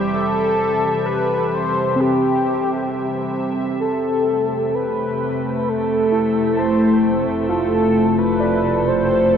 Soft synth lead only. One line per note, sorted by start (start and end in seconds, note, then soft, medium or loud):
0.14 1.07 A4 loud
1.06 1.56 B4 medium
1.54 2.02 C5 medium
2.00 3.36 G4 medium
3.80 4.77 A4 loud
4.75 5.59 B4 medium
5.59 5.70 B4 medium
5.69 6.60 A4 medium
6.59 7.27 C5 medium
7.49 8.20 A4 loud
8.18 8.89 B4 medium
8.88 9.36 C5 medium